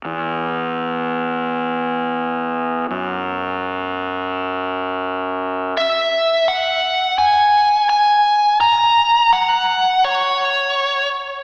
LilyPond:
<<
  \new Staff \with { instrumentName = "Lead electric guitar" } { \time 4/4 \key fis \mixolydian \tempo 4 = 84 r1 | r1 | e''4 fis''4 gis''4 gis''4 | ais''4 fis''4 cis''4. r8 | }
  \new Staff \with { instrumentName = "Fingered electric bass" } { \clef bass \time 4/4 \key fis \mixolydian e,1 | fis,1 | r1 | r1 | }
>>